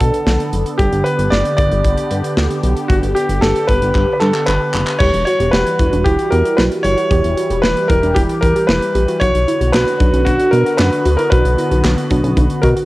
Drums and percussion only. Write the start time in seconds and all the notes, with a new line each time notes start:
0.00 kick, closed hi-hat
0.14 closed hi-hat
0.27 snare
0.40 closed hi-hat
0.53 closed hi-hat
0.66 closed hi-hat
0.79 kick, closed hi-hat
0.93 closed hi-hat
1.06 closed hi-hat
1.19 closed hi-hat
1.32 snare
1.45 closed hi-hat
1.58 kick, closed hi-hat
1.71 closed hi-hat
1.84 kick, closed hi-hat
1.97 closed hi-hat
2.11 closed hi-hat
2.24 closed hi-hat
2.37 snare
2.50 closed hi-hat
2.63 closed hi-hat
2.77 closed hi-hat
2.90 kick, closed hi-hat
3.03 closed hi-hat
3.16 closed hi-hat
3.29 closed hi-hat
3.42 snare
3.56 closed hi-hat
3.68 kick, closed hi-hat
3.82 closed hi-hat
3.95 kick, clap
4.21 clap
4.34 clap
4.48 clap
4.74 clap
4.87 clap
5.00 kick, crash
5.14 closed hi-hat
5.27 closed hi-hat
5.40 closed hi-hat
5.53 snare
5.67 closed hi-hat
5.79 kick, closed hi-hat
5.93 closed hi-hat
6.06 kick, closed hi-hat
6.19 closed hi-hat
6.32 closed hi-hat
6.45 closed hi-hat
6.58 snare
6.72 closed hi-hat
6.84 closed hi-hat
6.98 closed hi-hat
7.11 kick, closed hi-hat
7.24 closed hi-hat
7.38 closed hi-hat
7.50 closed hi-hat
7.64 snare
7.77 closed hi-hat
7.90 kick, closed hi-hat
8.03 closed hi-hat
8.16 kick, closed hi-hat
8.29 closed hi-hat
8.42 kick, closed hi-hat
8.56 closed hi-hat
8.69 snare
8.82 closed hi-hat
8.95 closed hi-hat
9.08 closed hi-hat
9.21 kick, closed hi-hat
9.35 closed hi-hat
9.48 closed hi-hat
9.61 closed hi-hat
9.74 snare, clap
9.88 closed hi-hat
10.00 kick, closed hi-hat
10.14 closed hi-hat
10.27 kick, closed hi-hat
10.40 closed hi-hat
10.53 closed hi-hat
10.66 closed hi-hat
10.79 snare, clap
10.93 closed hi-hat
11.05 closed hi-hat
11.19 closed hi-hat
11.32 kick, closed hi-hat
11.45 closed hi-hat
11.58 closed hi-hat
11.71 closed hi-hat
11.84 snare, clap
11.98 closed hi-hat
12.10 kick, closed hi-hat
12.24 closed hi-hat
12.37 kick, closed hi-hat
12.50 closed hi-hat
12.63 kick, closed hi-hat
12.77 closed hi-hat